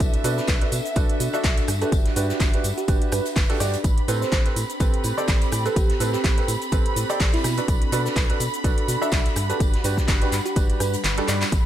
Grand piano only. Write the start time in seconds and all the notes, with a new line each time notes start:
Already playing: D4 F#4 A4 B4
0.24 D4 F#4 A4 B4
0.62 D4 F#4 A4 B4
0.96 D4 F#4 A4 B4
1.34 D4 F#4 A4 E5
1.82 D4 F#4 G4 B4
2.16 D4 F#4 G4 B4
2.54 D4 F#4 G4 B4
2.88 D4 F#4 G4 B4
3.49 D4 F#4 G4 A4
3.60 D4 F#4 G4 D5
4.08 C4 G4 A4 B4
4.46 C4 G4 A4 B4
4.80 C4 G4 A4 B4
5.18 C4 G4 A4 D5
5.66 C4 G4 A4 B4
6.00 C4 G4 A4 B4
6.38 C4 G4 A4 B4
6.72 C4 G4 A4 B4
7.10 C4 G4 A4 D5
7.58 D4 F#4 A4 B4
7.92 D4 F#4 A4 B4
8.30 D4 F#4 A4 B4
8.64 D4 F#4 A4 B4
9.02 D4 F#4 A4 E5
9.50 D4 F#4 G4 B4
9.84 D4 F#4 G4 B4
10.22 D4 F#4 G4 B4
10.56 D4 F#4 G4 B4
11.18 D4 F#4 G4 A4
11.28 D4 F#4 G4 D5